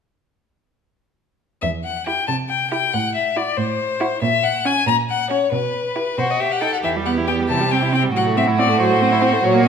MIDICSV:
0, 0, Header, 1, 5, 480
1, 0, Start_track
1, 0, Tempo, 434153
1, 1803, Time_signature, 6, 3, 24, 8
1, 10702, End_track
2, 0, Start_track
2, 0, Title_t, "Violin"
2, 0, Program_c, 0, 40
2, 1787, Note_on_c, 0, 76, 56
2, 1876, Note_off_c, 0, 76, 0
2, 2035, Note_on_c, 0, 78, 49
2, 2275, Note_off_c, 0, 78, 0
2, 2281, Note_on_c, 0, 79, 55
2, 2510, Note_off_c, 0, 79, 0
2, 2516, Note_on_c, 0, 81, 52
2, 2605, Note_off_c, 0, 81, 0
2, 2750, Note_on_c, 0, 79, 50
2, 2984, Note_off_c, 0, 79, 0
2, 2991, Note_on_c, 0, 79, 61
2, 3244, Note_on_c, 0, 78, 59
2, 3260, Note_off_c, 0, 79, 0
2, 3476, Note_off_c, 0, 78, 0
2, 3483, Note_on_c, 0, 76, 49
2, 3722, Note_on_c, 0, 74, 54
2, 3739, Note_off_c, 0, 76, 0
2, 3949, Note_on_c, 0, 72, 59
2, 3965, Note_off_c, 0, 74, 0
2, 4659, Note_off_c, 0, 72, 0
2, 4666, Note_on_c, 0, 76, 67
2, 4905, Note_on_c, 0, 78, 61
2, 4921, Note_off_c, 0, 76, 0
2, 5150, Note_on_c, 0, 80, 69
2, 5167, Note_off_c, 0, 78, 0
2, 5380, Note_off_c, 0, 80, 0
2, 5386, Note_on_c, 0, 82, 72
2, 5475, Note_off_c, 0, 82, 0
2, 5636, Note_on_c, 0, 78, 65
2, 5854, Note_off_c, 0, 78, 0
2, 5861, Note_on_c, 0, 73, 59
2, 6098, Note_off_c, 0, 73, 0
2, 6108, Note_on_c, 0, 71, 56
2, 6832, Note_on_c, 0, 72, 49
2, 6849, Note_off_c, 0, 71, 0
2, 6969, Note_on_c, 0, 75, 45
2, 6985, Note_off_c, 0, 72, 0
2, 7077, Note_on_c, 0, 76, 50
2, 7093, Note_off_c, 0, 75, 0
2, 7199, Note_on_c, 0, 78, 48
2, 7216, Note_off_c, 0, 76, 0
2, 7320, Note_on_c, 0, 79, 50
2, 7337, Note_off_c, 0, 78, 0
2, 7437, Note_off_c, 0, 79, 0
2, 7444, Note_on_c, 0, 78, 41
2, 7492, Note_off_c, 0, 78, 0
2, 7556, Note_on_c, 0, 76, 49
2, 7645, Note_off_c, 0, 76, 0
2, 7801, Note_on_c, 0, 78, 43
2, 7890, Note_off_c, 0, 78, 0
2, 8042, Note_on_c, 0, 79, 50
2, 8131, Note_off_c, 0, 79, 0
2, 8281, Note_on_c, 0, 81, 59
2, 8527, Note_on_c, 0, 79, 58
2, 8544, Note_off_c, 0, 81, 0
2, 8766, Note_off_c, 0, 79, 0
2, 8783, Note_on_c, 0, 79, 56
2, 8872, Note_off_c, 0, 79, 0
2, 9025, Note_on_c, 0, 78, 59
2, 9113, Note_off_c, 0, 78, 0
2, 9256, Note_on_c, 0, 76, 51
2, 9345, Note_off_c, 0, 76, 0
2, 9491, Note_on_c, 0, 74, 61
2, 9719, Note_off_c, 0, 74, 0
2, 9732, Note_on_c, 0, 72, 64
2, 10436, Note_on_c, 0, 73, 64
2, 10452, Note_off_c, 0, 72, 0
2, 10664, Note_off_c, 0, 73, 0
2, 10702, End_track
3, 0, Start_track
3, 0, Title_t, "Violin"
3, 0, Program_c, 1, 40
3, 2284, Note_on_c, 1, 67, 34
3, 2464, Note_off_c, 1, 67, 0
3, 3000, Note_on_c, 1, 67, 42
3, 3182, Note_off_c, 1, 67, 0
3, 3721, Note_on_c, 1, 66, 40
3, 3897, Note_off_c, 1, 66, 0
3, 4425, Note_on_c, 1, 66, 56
3, 4605, Note_off_c, 1, 66, 0
3, 5141, Note_on_c, 1, 66, 45
3, 5320, Note_off_c, 1, 66, 0
3, 5859, Note_on_c, 1, 66, 45
3, 6040, Note_off_c, 1, 66, 0
3, 6587, Note_on_c, 1, 67, 35
3, 6770, Note_off_c, 1, 67, 0
3, 6826, Note_on_c, 1, 66, 46
3, 7073, Note_on_c, 1, 67, 41
3, 7089, Note_off_c, 1, 66, 0
3, 7305, Note_on_c, 1, 69, 46
3, 7322, Note_off_c, 1, 67, 0
3, 7543, Note_off_c, 1, 69, 0
3, 7549, Note_on_c, 1, 67, 40
3, 8951, Note_off_c, 1, 67, 0
3, 8998, Note_on_c, 1, 66, 46
3, 10702, Note_off_c, 1, 66, 0
3, 10702, End_track
4, 0, Start_track
4, 0, Title_t, "Viola"
4, 0, Program_c, 2, 41
4, 2288, Note_on_c, 2, 64, 36
4, 2466, Note_off_c, 2, 64, 0
4, 3008, Note_on_c, 2, 64, 41
4, 3187, Note_off_c, 2, 64, 0
4, 3719, Note_on_c, 2, 64, 44
4, 3896, Note_off_c, 2, 64, 0
4, 4428, Note_on_c, 2, 64, 52
4, 4607, Note_off_c, 2, 64, 0
4, 5145, Note_on_c, 2, 61, 51
4, 5322, Note_off_c, 2, 61, 0
4, 5864, Note_on_c, 2, 61, 46
4, 6043, Note_off_c, 2, 61, 0
4, 6588, Note_on_c, 2, 64, 36
4, 6771, Note_off_c, 2, 64, 0
4, 7317, Note_on_c, 2, 63, 40
4, 7501, Note_off_c, 2, 63, 0
4, 7562, Note_on_c, 2, 52, 39
4, 7698, Note_on_c, 2, 55, 35
4, 7715, Note_off_c, 2, 52, 0
4, 7813, Note_on_c, 2, 59, 38
4, 7829, Note_off_c, 2, 55, 0
4, 7934, Note_on_c, 2, 64, 37
4, 7951, Note_off_c, 2, 59, 0
4, 8050, Note_on_c, 2, 59, 35
4, 8066, Note_off_c, 2, 64, 0
4, 8182, Note_on_c, 2, 55, 39
4, 8199, Note_off_c, 2, 59, 0
4, 8292, Note_off_c, 2, 55, 0
4, 8299, Note_on_c, 2, 52, 39
4, 8409, Note_on_c, 2, 55, 38
4, 8426, Note_off_c, 2, 52, 0
4, 8538, Note_on_c, 2, 60, 35
4, 8555, Note_off_c, 2, 55, 0
4, 8650, Note_on_c, 2, 64, 39
4, 8667, Note_off_c, 2, 60, 0
4, 8766, Note_on_c, 2, 60, 41
4, 8782, Note_off_c, 2, 64, 0
4, 8883, Note_on_c, 2, 55, 35
4, 8900, Note_off_c, 2, 60, 0
4, 8994, Note_off_c, 2, 55, 0
4, 9000, Note_on_c, 2, 54, 40
4, 9139, Note_on_c, 2, 57, 40
4, 9156, Note_off_c, 2, 54, 0
4, 9248, Note_on_c, 2, 60, 42
4, 9264, Note_off_c, 2, 57, 0
4, 9370, Note_on_c, 2, 64, 42
4, 9386, Note_off_c, 2, 60, 0
4, 9497, Note_on_c, 2, 60, 38
4, 9514, Note_off_c, 2, 64, 0
4, 9606, Note_on_c, 2, 57, 44
4, 9622, Note_off_c, 2, 60, 0
4, 9723, Note_on_c, 2, 54, 46
4, 9740, Note_off_c, 2, 57, 0
4, 9840, Note_on_c, 2, 57, 45
4, 9857, Note_off_c, 2, 54, 0
4, 9967, Note_on_c, 2, 60, 45
4, 9983, Note_off_c, 2, 57, 0
4, 10081, Note_on_c, 2, 64, 51
4, 10098, Note_off_c, 2, 60, 0
4, 10189, Note_on_c, 2, 60, 48
4, 10205, Note_off_c, 2, 64, 0
4, 10310, Note_on_c, 2, 57, 49
4, 10327, Note_off_c, 2, 60, 0
4, 10419, Note_off_c, 2, 57, 0
4, 10426, Note_on_c, 2, 54, 54
4, 10553, Note_on_c, 2, 58, 52
4, 10569, Note_off_c, 2, 54, 0
4, 10693, Note_off_c, 2, 58, 0
4, 10702, End_track
5, 0, Start_track
5, 0, Title_t, "Cello"
5, 0, Program_c, 3, 42
5, 1799, Note_on_c, 3, 40, 48
5, 2372, Note_off_c, 3, 40, 0
5, 2524, Note_on_c, 3, 48, 49
5, 3096, Note_off_c, 3, 48, 0
5, 3249, Note_on_c, 3, 45, 51
5, 3810, Note_off_c, 3, 45, 0
5, 3955, Note_on_c, 3, 45, 54
5, 4518, Note_off_c, 3, 45, 0
5, 4665, Note_on_c, 3, 46, 59
5, 5231, Note_off_c, 3, 46, 0
5, 5379, Note_on_c, 3, 46, 54
5, 5950, Note_off_c, 3, 46, 0
5, 6100, Note_on_c, 3, 47, 50
5, 6679, Note_off_c, 3, 47, 0
5, 6834, Note_on_c, 3, 47, 42
5, 7413, Note_off_c, 3, 47, 0
5, 7561, Note_on_c, 3, 40, 39
5, 8285, Note_on_c, 3, 48, 39
5, 8302, Note_off_c, 3, 40, 0
5, 8998, Note_off_c, 3, 48, 0
5, 9005, Note_on_c, 3, 45, 45
5, 10402, Note_off_c, 3, 45, 0
5, 10428, Note_on_c, 3, 46, 61
5, 10702, Note_off_c, 3, 46, 0
5, 10702, End_track
0, 0, End_of_file